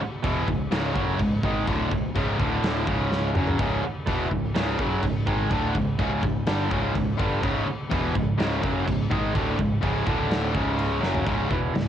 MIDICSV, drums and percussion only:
0, 0, Header, 1, 2, 480
1, 0, Start_track
1, 0, Tempo, 479616
1, 1679, Time_signature, 4, 2, 24, 8
1, 11891, End_track
2, 0, Start_track
2, 0, Title_t, "Drums"
2, 235, Note_on_c, 9, 49, 66
2, 239, Note_on_c, 9, 36, 100
2, 335, Note_off_c, 9, 49, 0
2, 339, Note_off_c, 9, 36, 0
2, 479, Note_on_c, 9, 36, 92
2, 579, Note_off_c, 9, 36, 0
2, 718, Note_on_c, 9, 49, 63
2, 726, Note_on_c, 9, 38, 110
2, 818, Note_off_c, 9, 49, 0
2, 826, Note_off_c, 9, 38, 0
2, 958, Note_on_c, 9, 36, 103
2, 1058, Note_off_c, 9, 36, 0
2, 1195, Note_on_c, 9, 49, 62
2, 1196, Note_on_c, 9, 36, 91
2, 1295, Note_off_c, 9, 49, 0
2, 1296, Note_off_c, 9, 36, 0
2, 1435, Note_on_c, 9, 36, 107
2, 1535, Note_off_c, 9, 36, 0
2, 1676, Note_on_c, 9, 36, 109
2, 1679, Note_on_c, 9, 49, 65
2, 1777, Note_off_c, 9, 36, 0
2, 1779, Note_off_c, 9, 49, 0
2, 1917, Note_on_c, 9, 36, 89
2, 2017, Note_off_c, 9, 36, 0
2, 2159, Note_on_c, 9, 36, 101
2, 2162, Note_on_c, 9, 49, 65
2, 2259, Note_off_c, 9, 36, 0
2, 2262, Note_off_c, 9, 49, 0
2, 2398, Note_on_c, 9, 36, 110
2, 2498, Note_off_c, 9, 36, 0
2, 2636, Note_on_c, 9, 49, 62
2, 2644, Note_on_c, 9, 38, 108
2, 2736, Note_off_c, 9, 49, 0
2, 2744, Note_off_c, 9, 38, 0
2, 2874, Note_on_c, 9, 36, 105
2, 2974, Note_off_c, 9, 36, 0
2, 3120, Note_on_c, 9, 38, 69
2, 3220, Note_off_c, 9, 38, 0
2, 3354, Note_on_c, 9, 45, 97
2, 3454, Note_off_c, 9, 45, 0
2, 3477, Note_on_c, 9, 43, 87
2, 3577, Note_off_c, 9, 43, 0
2, 3595, Note_on_c, 9, 36, 114
2, 3596, Note_on_c, 9, 49, 63
2, 3695, Note_off_c, 9, 36, 0
2, 3696, Note_off_c, 9, 49, 0
2, 4075, Note_on_c, 9, 36, 99
2, 4079, Note_on_c, 9, 49, 66
2, 4175, Note_off_c, 9, 36, 0
2, 4179, Note_off_c, 9, 49, 0
2, 4316, Note_on_c, 9, 36, 90
2, 4416, Note_off_c, 9, 36, 0
2, 4557, Note_on_c, 9, 49, 60
2, 4565, Note_on_c, 9, 38, 112
2, 4657, Note_off_c, 9, 49, 0
2, 4665, Note_off_c, 9, 38, 0
2, 4794, Note_on_c, 9, 36, 98
2, 4894, Note_off_c, 9, 36, 0
2, 5034, Note_on_c, 9, 36, 92
2, 5036, Note_on_c, 9, 49, 63
2, 5134, Note_off_c, 9, 36, 0
2, 5136, Note_off_c, 9, 49, 0
2, 5275, Note_on_c, 9, 36, 100
2, 5375, Note_off_c, 9, 36, 0
2, 5513, Note_on_c, 9, 36, 109
2, 5516, Note_on_c, 9, 49, 63
2, 5613, Note_off_c, 9, 36, 0
2, 5616, Note_off_c, 9, 49, 0
2, 5754, Note_on_c, 9, 36, 92
2, 5854, Note_off_c, 9, 36, 0
2, 5994, Note_on_c, 9, 36, 102
2, 5994, Note_on_c, 9, 49, 61
2, 6094, Note_off_c, 9, 36, 0
2, 6094, Note_off_c, 9, 49, 0
2, 6235, Note_on_c, 9, 36, 95
2, 6335, Note_off_c, 9, 36, 0
2, 6471, Note_on_c, 9, 49, 64
2, 6479, Note_on_c, 9, 38, 113
2, 6571, Note_off_c, 9, 49, 0
2, 6579, Note_off_c, 9, 38, 0
2, 6718, Note_on_c, 9, 36, 104
2, 6818, Note_off_c, 9, 36, 0
2, 6958, Note_on_c, 9, 36, 87
2, 6958, Note_on_c, 9, 49, 62
2, 7058, Note_off_c, 9, 36, 0
2, 7058, Note_off_c, 9, 49, 0
2, 7200, Note_on_c, 9, 36, 109
2, 7300, Note_off_c, 9, 36, 0
2, 7438, Note_on_c, 9, 49, 67
2, 7440, Note_on_c, 9, 36, 110
2, 7538, Note_off_c, 9, 49, 0
2, 7540, Note_off_c, 9, 36, 0
2, 7921, Note_on_c, 9, 36, 112
2, 7924, Note_on_c, 9, 49, 68
2, 8021, Note_off_c, 9, 36, 0
2, 8024, Note_off_c, 9, 49, 0
2, 8161, Note_on_c, 9, 36, 99
2, 8261, Note_off_c, 9, 36, 0
2, 8404, Note_on_c, 9, 49, 69
2, 8412, Note_on_c, 9, 38, 118
2, 8504, Note_off_c, 9, 49, 0
2, 8512, Note_off_c, 9, 38, 0
2, 8642, Note_on_c, 9, 36, 102
2, 8742, Note_off_c, 9, 36, 0
2, 8883, Note_on_c, 9, 36, 89
2, 8889, Note_on_c, 9, 49, 70
2, 8983, Note_off_c, 9, 36, 0
2, 8989, Note_off_c, 9, 49, 0
2, 9121, Note_on_c, 9, 36, 110
2, 9221, Note_off_c, 9, 36, 0
2, 9359, Note_on_c, 9, 36, 105
2, 9360, Note_on_c, 9, 49, 68
2, 9459, Note_off_c, 9, 36, 0
2, 9461, Note_off_c, 9, 49, 0
2, 9598, Note_on_c, 9, 36, 91
2, 9698, Note_off_c, 9, 36, 0
2, 9837, Note_on_c, 9, 36, 111
2, 9837, Note_on_c, 9, 49, 62
2, 9937, Note_off_c, 9, 36, 0
2, 9937, Note_off_c, 9, 49, 0
2, 10076, Note_on_c, 9, 36, 118
2, 10176, Note_off_c, 9, 36, 0
2, 10319, Note_on_c, 9, 49, 59
2, 10327, Note_on_c, 9, 38, 104
2, 10419, Note_off_c, 9, 49, 0
2, 10427, Note_off_c, 9, 38, 0
2, 10555, Note_on_c, 9, 36, 98
2, 10655, Note_off_c, 9, 36, 0
2, 10795, Note_on_c, 9, 49, 59
2, 10896, Note_off_c, 9, 49, 0
2, 11041, Note_on_c, 9, 38, 64
2, 11141, Note_off_c, 9, 38, 0
2, 11155, Note_on_c, 9, 43, 93
2, 11255, Note_off_c, 9, 43, 0
2, 11273, Note_on_c, 9, 36, 107
2, 11278, Note_on_c, 9, 49, 65
2, 11373, Note_off_c, 9, 36, 0
2, 11378, Note_off_c, 9, 49, 0
2, 11514, Note_on_c, 9, 36, 96
2, 11614, Note_off_c, 9, 36, 0
2, 11757, Note_on_c, 9, 49, 62
2, 11765, Note_on_c, 9, 38, 105
2, 11857, Note_off_c, 9, 49, 0
2, 11865, Note_off_c, 9, 38, 0
2, 11891, End_track
0, 0, End_of_file